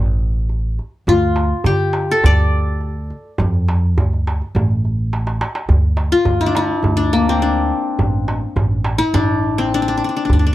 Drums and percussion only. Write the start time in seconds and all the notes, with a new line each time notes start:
0.49 darbuka ka
0.79 darbuka ka
1.08 darbuka dum
1.23 darbuka ka
1.36 darbuka tek
1.64 darbuka dum
1.93 darbuka tek
2.09 darbuka ka
2.24 darbuka dum
2.81 darbuka ka
3.10 darbuka ka
3.38 darbuka dum
3.54 darbuka ka
3.69 darbuka tek
3.98 darbuka dum
4.13 darbuka ka
4.27 darbuka tek
4.42 darbuka ka
4.56 darbuka dum
4.71 darbuka ka
4.85 darbuka ka
5.13 darbuka tek
5.27 darbuka ka
5.41 darbuka tek
5.55 darbuka ka
5.69 darbuka dum
5.97 darbuka tek
6.25 darbuka dum
6.41 darbuka ka
6.55 darbuka tek
6.84 darbuka dum
7.13 darbuka ka
7.42 darbuka ka
7.99 darbuka dum
8.28 darbuka tek
8.56 darbuka dum
8.72 darbuka ka
8.84 darbuka tek
9.14 darbuka dum
9.43 darbuka ka
9.73 darbuka ka
10.30 darbuka dum